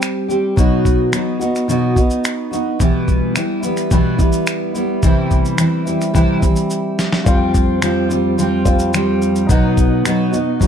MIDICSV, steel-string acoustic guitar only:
0, 0, Header, 1, 2, 480
1, 0, Start_track
1, 0, Tempo, 557621
1, 490, Time_signature, 4, 2, 24, 8
1, 9186, End_track
2, 0, Start_track
2, 0, Title_t, "Steel-string acoustic guitar"
2, 0, Program_c, 0, 25
2, 0, Note_on_c, 0, 55, 39
2, 0, Note_on_c, 0, 60, 51
2, 0, Note_on_c, 0, 67, 53
2, 234, Note_off_c, 0, 67, 0
2, 244, Note_on_c, 0, 67, 55
2, 249, Note_off_c, 0, 60, 0
2, 257, Note_off_c, 0, 55, 0
2, 259, Note_on_c, 0, 60, 52
2, 271, Note_on_c, 0, 55, 40
2, 483, Note_on_c, 0, 47, 85
2, 487, Note_off_c, 0, 67, 0
2, 489, Note_off_c, 0, 55, 0
2, 489, Note_on_c, 0, 54, 77
2, 492, Note_on_c, 0, 59, 73
2, 493, Note_off_c, 0, 60, 0
2, 497, Note_on_c, 0, 63, 84
2, 502, Note_on_c, 0, 66, 83
2, 954, Note_off_c, 0, 54, 0
2, 964, Note_on_c, 0, 54, 65
2, 966, Note_off_c, 0, 47, 0
2, 973, Note_off_c, 0, 63, 0
2, 974, Note_off_c, 0, 59, 0
2, 976, Note_off_c, 0, 66, 0
2, 977, Note_on_c, 0, 59, 63
2, 985, Note_on_c, 0, 63, 66
2, 991, Note_on_c, 0, 66, 65
2, 1190, Note_off_c, 0, 66, 0
2, 1201, Note_on_c, 0, 66, 62
2, 1204, Note_off_c, 0, 63, 0
2, 1207, Note_off_c, 0, 54, 0
2, 1213, Note_off_c, 0, 59, 0
2, 1215, Note_on_c, 0, 63, 51
2, 1226, Note_on_c, 0, 59, 53
2, 1445, Note_off_c, 0, 59, 0
2, 1445, Note_off_c, 0, 66, 0
2, 1445, Note_on_c, 0, 47, 76
2, 1451, Note_on_c, 0, 54, 81
2, 1452, Note_off_c, 0, 63, 0
2, 1455, Note_on_c, 0, 59, 81
2, 1461, Note_on_c, 0, 63, 80
2, 1464, Note_on_c, 0, 66, 85
2, 1670, Note_off_c, 0, 66, 0
2, 1680, Note_on_c, 0, 66, 53
2, 1683, Note_off_c, 0, 63, 0
2, 1687, Note_off_c, 0, 47, 0
2, 1690, Note_off_c, 0, 54, 0
2, 1692, Note_off_c, 0, 59, 0
2, 1694, Note_on_c, 0, 63, 52
2, 1705, Note_on_c, 0, 59, 43
2, 2148, Note_off_c, 0, 66, 0
2, 2159, Note_on_c, 0, 66, 51
2, 2163, Note_off_c, 0, 63, 0
2, 2174, Note_on_c, 0, 63, 44
2, 2181, Note_off_c, 0, 59, 0
2, 2185, Note_on_c, 0, 59, 43
2, 2404, Note_off_c, 0, 66, 0
2, 2404, Note_on_c, 0, 47, 86
2, 2410, Note_off_c, 0, 59, 0
2, 2410, Note_on_c, 0, 52, 78
2, 2411, Note_off_c, 0, 63, 0
2, 2414, Note_on_c, 0, 55, 78
2, 2420, Note_on_c, 0, 59, 86
2, 2425, Note_on_c, 0, 64, 80
2, 2878, Note_off_c, 0, 52, 0
2, 2882, Note_on_c, 0, 52, 57
2, 2886, Note_off_c, 0, 47, 0
2, 2891, Note_off_c, 0, 55, 0
2, 2891, Note_off_c, 0, 59, 0
2, 2894, Note_on_c, 0, 55, 61
2, 2902, Note_on_c, 0, 59, 76
2, 2905, Note_off_c, 0, 64, 0
2, 2908, Note_on_c, 0, 64, 68
2, 3109, Note_off_c, 0, 64, 0
2, 3120, Note_on_c, 0, 64, 66
2, 3123, Note_off_c, 0, 59, 0
2, 3125, Note_off_c, 0, 52, 0
2, 3132, Note_off_c, 0, 55, 0
2, 3133, Note_on_c, 0, 59, 58
2, 3148, Note_on_c, 0, 55, 47
2, 3362, Note_off_c, 0, 55, 0
2, 3363, Note_on_c, 0, 47, 81
2, 3364, Note_off_c, 0, 64, 0
2, 3366, Note_off_c, 0, 59, 0
2, 3369, Note_on_c, 0, 52, 74
2, 3373, Note_on_c, 0, 55, 77
2, 3377, Note_on_c, 0, 59, 88
2, 3381, Note_on_c, 0, 64, 92
2, 3592, Note_off_c, 0, 64, 0
2, 3603, Note_on_c, 0, 64, 61
2, 3605, Note_off_c, 0, 59, 0
2, 3606, Note_off_c, 0, 47, 0
2, 3609, Note_off_c, 0, 52, 0
2, 3611, Note_off_c, 0, 55, 0
2, 3616, Note_on_c, 0, 59, 53
2, 3628, Note_on_c, 0, 55, 46
2, 4079, Note_off_c, 0, 64, 0
2, 4082, Note_on_c, 0, 64, 51
2, 4086, Note_off_c, 0, 59, 0
2, 4097, Note_on_c, 0, 59, 53
2, 4106, Note_off_c, 0, 55, 0
2, 4110, Note_on_c, 0, 55, 47
2, 4324, Note_on_c, 0, 48, 71
2, 4325, Note_off_c, 0, 55, 0
2, 4326, Note_off_c, 0, 64, 0
2, 4331, Note_on_c, 0, 52, 89
2, 4333, Note_off_c, 0, 59, 0
2, 4335, Note_on_c, 0, 55, 94
2, 4339, Note_on_c, 0, 60, 80
2, 4343, Note_on_c, 0, 64, 88
2, 4789, Note_off_c, 0, 52, 0
2, 4799, Note_on_c, 0, 52, 68
2, 4807, Note_off_c, 0, 48, 0
2, 4809, Note_off_c, 0, 55, 0
2, 4813, Note_on_c, 0, 55, 72
2, 4816, Note_off_c, 0, 60, 0
2, 4816, Note_off_c, 0, 64, 0
2, 4819, Note_on_c, 0, 60, 68
2, 4828, Note_on_c, 0, 64, 70
2, 5028, Note_off_c, 0, 64, 0
2, 5038, Note_on_c, 0, 64, 63
2, 5044, Note_off_c, 0, 52, 0
2, 5044, Note_off_c, 0, 60, 0
2, 5051, Note_off_c, 0, 55, 0
2, 5054, Note_on_c, 0, 60, 54
2, 5066, Note_on_c, 0, 55, 52
2, 5280, Note_off_c, 0, 55, 0
2, 5281, Note_on_c, 0, 48, 92
2, 5282, Note_on_c, 0, 52, 84
2, 5283, Note_off_c, 0, 60, 0
2, 5284, Note_off_c, 0, 64, 0
2, 5290, Note_on_c, 0, 55, 90
2, 5293, Note_on_c, 0, 60, 96
2, 5297, Note_on_c, 0, 64, 102
2, 5507, Note_off_c, 0, 64, 0
2, 5518, Note_on_c, 0, 64, 56
2, 5521, Note_off_c, 0, 60, 0
2, 5525, Note_off_c, 0, 48, 0
2, 5526, Note_off_c, 0, 52, 0
2, 5530, Note_off_c, 0, 55, 0
2, 5532, Note_on_c, 0, 60, 48
2, 5546, Note_on_c, 0, 55, 43
2, 6241, Note_on_c, 0, 53, 80
2, 6244, Note_off_c, 0, 64, 0
2, 6247, Note_off_c, 0, 55, 0
2, 6251, Note_on_c, 0, 55, 89
2, 6253, Note_off_c, 0, 60, 0
2, 6256, Note_on_c, 0, 60, 81
2, 6260, Note_on_c, 0, 65, 89
2, 6717, Note_off_c, 0, 53, 0
2, 6724, Note_off_c, 0, 55, 0
2, 6727, Note_off_c, 0, 60, 0
2, 6728, Note_on_c, 0, 53, 82
2, 6734, Note_on_c, 0, 55, 77
2, 6735, Note_off_c, 0, 65, 0
2, 6738, Note_on_c, 0, 60, 89
2, 6745, Note_on_c, 0, 65, 91
2, 6955, Note_off_c, 0, 65, 0
2, 6966, Note_on_c, 0, 65, 60
2, 6969, Note_off_c, 0, 53, 0
2, 6970, Note_off_c, 0, 60, 0
2, 6972, Note_off_c, 0, 55, 0
2, 6980, Note_on_c, 0, 60, 59
2, 6991, Note_on_c, 0, 55, 53
2, 7207, Note_on_c, 0, 53, 64
2, 7208, Note_off_c, 0, 55, 0
2, 7208, Note_off_c, 0, 65, 0
2, 7213, Note_off_c, 0, 60, 0
2, 7218, Note_on_c, 0, 55, 74
2, 7223, Note_on_c, 0, 60, 70
2, 7233, Note_on_c, 0, 65, 79
2, 7434, Note_off_c, 0, 65, 0
2, 7444, Note_on_c, 0, 65, 60
2, 7448, Note_off_c, 0, 53, 0
2, 7448, Note_off_c, 0, 60, 0
2, 7454, Note_off_c, 0, 55, 0
2, 7459, Note_on_c, 0, 60, 52
2, 7469, Note_on_c, 0, 55, 50
2, 7685, Note_off_c, 0, 55, 0
2, 7687, Note_off_c, 0, 65, 0
2, 7688, Note_on_c, 0, 53, 77
2, 7690, Note_off_c, 0, 60, 0
2, 7695, Note_on_c, 0, 55, 88
2, 7701, Note_on_c, 0, 60, 79
2, 7706, Note_on_c, 0, 65, 87
2, 8165, Note_on_c, 0, 47, 81
2, 8166, Note_off_c, 0, 53, 0
2, 8169, Note_on_c, 0, 54, 79
2, 8171, Note_off_c, 0, 55, 0
2, 8173, Note_off_c, 0, 60, 0
2, 8174, Note_on_c, 0, 59, 90
2, 8176, Note_on_c, 0, 63, 94
2, 8178, Note_off_c, 0, 65, 0
2, 8183, Note_on_c, 0, 66, 88
2, 8639, Note_off_c, 0, 47, 0
2, 8644, Note_off_c, 0, 54, 0
2, 8649, Note_on_c, 0, 47, 75
2, 8653, Note_off_c, 0, 63, 0
2, 8654, Note_off_c, 0, 59, 0
2, 8655, Note_on_c, 0, 54, 84
2, 8656, Note_off_c, 0, 66, 0
2, 8658, Note_on_c, 0, 59, 83
2, 8663, Note_on_c, 0, 63, 87
2, 8668, Note_on_c, 0, 66, 91
2, 8868, Note_off_c, 0, 66, 0
2, 8878, Note_on_c, 0, 66, 56
2, 8886, Note_off_c, 0, 63, 0
2, 8889, Note_off_c, 0, 47, 0
2, 8892, Note_off_c, 0, 54, 0
2, 8894, Note_off_c, 0, 59, 0
2, 8896, Note_on_c, 0, 63, 59
2, 8906, Note_on_c, 0, 59, 51
2, 9120, Note_off_c, 0, 59, 0
2, 9121, Note_on_c, 0, 54, 76
2, 9124, Note_off_c, 0, 66, 0
2, 9130, Note_off_c, 0, 63, 0
2, 9131, Note_on_c, 0, 59, 67
2, 9141, Note_on_c, 0, 63, 71
2, 9147, Note_on_c, 0, 66, 66
2, 9186, Note_off_c, 0, 54, 0
2, 9186, Note_off_c, 0, 59, 0
2, 9186, Note_off_c, 0, 63, 0
2, 9186, Note_off_c, 0, 66, 0
2, 9186, End_track
0, 0, End_of_file